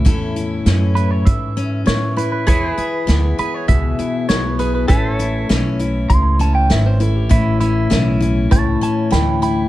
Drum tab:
HH |xxxxxxxx|xxxxxxxx|xxxxxxxx|xxxxxxxx|
SD |--o---o-|--o---o-|--o---o-|--o---o-|
BD |o---o---|o---o---|o---o---|o---o---|